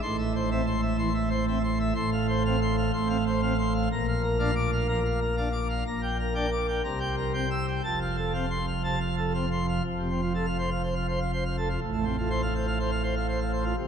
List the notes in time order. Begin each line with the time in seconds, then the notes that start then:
0.02 A1 A2 C6
0.18 E5
0.36 C5
0.51 C4 E5
0.66 C6
0.82 E5
0.98 E3 C6
1.14 E5
1.30 C5
1.47 C4 E5
1.64 C6
1.80 E5
1.95 A1 A2 C6
2.12 F5
2.28 C5
2.46 C4 F5
2.62 C6
2.77 F5
2.93 A1 A2 C6
3.06 C4 F5
3.26 C5
3.42 C4 F5
3.58 C6
3.75 F5
3.92 A#1 A#2 A#5
4.08 F5
4.23 A#4
4.39 D4 F5
4.56 D6
4.72 F5
4.88 F3 A#5
5.05 F5
5.20 A#4
5.37 D4 F5
5.52 D6
5.70 F5
5.86 A#1 A#2 A#5
6.03 G5
6.19 A#4
6.35 D4 G5
6.52 D6
6.68 G5
6.84 C2 C3 A#5
7.00 G5
7.17 A#4
7.34 C4 G5
7.51 E6
7.68 G5
7.84 F1 F2 A5
8.01 F5
8.17 A4
8.33 C4 F5
8.50 C6
8.67 F5
8.84 C3 A5
9.00 F5
9.18 A4
9.34 C4 F5
9.51 C6
9.69 F5
9.84 F1 F2
9.99 C3
10.10 C4
10.22 F4
10.35 A4
10.46 F5
10.59 C5
10.71 F5
10.83 C5
10.95 F5
11.09 C5
11.20 F5
11.33 C5
11.45 F5
11.58 A4
11.69 F4
11.81 A1 A2
11.93 A3
12.05 C4
12.18 F4
12.30 C5
12.42 F5
12.55 C5
12.67 F5
12.80 C5
12.91 F5
13.03 C5
13.16 F5
13.29 C5
13.40 F5
13.53 C5
13.65 F4
13.77 C2 C3